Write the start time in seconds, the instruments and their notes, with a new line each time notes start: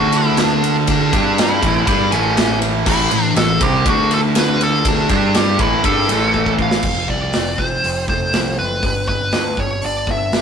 Already playing: picked electric bass D2, distorted electric guitar D3 A3 D4, lead electric guitar F#4
0.12 ride
0.17 lead electric guitar E4
0.37 lead electric guitar D4, snare, ride
0.64 ride
0.87 lead electric guitar D4, kick, ride
1.13 picked electric bass G2, distorted electric guitar G3 D4 G4, kick, ride
1.37 lead electric guitar E4, snare, ride
1.62 picked electric bass A1, distorted electric guitar A2 E3 A3, kick, ride
1.86 picked electric bass G2, distorted electric guitar G3 D4 G4, lead electric guitar E4, kick, ride
2.11 picked electric bass A1, distorted electric guitar A2 E3 A3, lead electric guitar C#4, ride
2.37 snare, ride
2.62 ride
2.86 picked electric bass A1, distorted electric guitar A2 E3 A3, lead electric guitar E4, kick, crash
3.11 picked electric bass A1, distorted electric guitar A2 E3, ride
3.35 picked electric bass A1, distorted electric guitar A2 E3, lead electric guitar A4, snare, ride
3.61 picked electric bass C2, distorted electric guitar C3 G3 C4, lead electric guitar G4, kick, ride
3.86 picked electric bass D2, distorted electric guitar D3 A3 D4, lead electric guitar F#4, kick, ride
4.11 lead electric guitar A4, ride
4.35 lead electric guitar B4, snare, ride
4.61 lead electric guitar A4, ride
4.85 lead electric guitar D4, kick, ride
5.09 picked electric bass G2, distorted electric guitar G3 D4 G4, kick, ride
5.34 lead electric guitar G4, snare, ride
5.58 picked electric bass A1, distorted electric guitar A2 E3 A3, lead electric guitar E4, kick, ride
5.84 picked electric bass G2, distorted electric guitar G3 D4 G4, lead electric guitar A4, kick, ride
6.09 picked electric bass A1, distorted electric guitar A2 E3 A3, ride
6.34 kick
6.46 kick
6.59 lead electric guitar F5, kick
6.71 snare
6.83 picked electric bass F1, clean electric guitar F3, kick, crash
7.08 picked electric bass C2, lead electric guitar D5, kick
7.33 picked electric bass F1, clean electric guitar C4, snare, open hi-hat
7.58 picked electric bass F1, clean electric guitar F3, lead electric guitar C5, kick
7.84 picked electric bass F1, clean electric guitar C4, open hi-hat
8.08 picked electric bass F1, clean electric guitar A3, lead electric guitar C5, kick
8.33 picked electric bass C2, clean electric guitar F3, snare, open hi-hat
8.58 picked electric bass F#1, clean electric guitar C4, lead electric guitar B4
8.83 picked electric bass G1, clean electric guitar G2, kick, open hi-hat
9.08 picked electric bass G1, lead electric guitar B4, kick
9.32 picked electric bass D2, clean electric guitar D4, snare, open hi-hat
9.57 picked electric bass G1, clean electric guitar G3, lead electric guitar C#5, kick
9.82 picked electric bass G1, clean electric guitar D4, lead electric guitar D5, open hi-hat
10.07 picked electric bass G1, clean electric guitar B3, kick
10.11 lead electric guitar E5
10.31 picked electric bass G1, clean electric guitar G3, snare, open hi-hat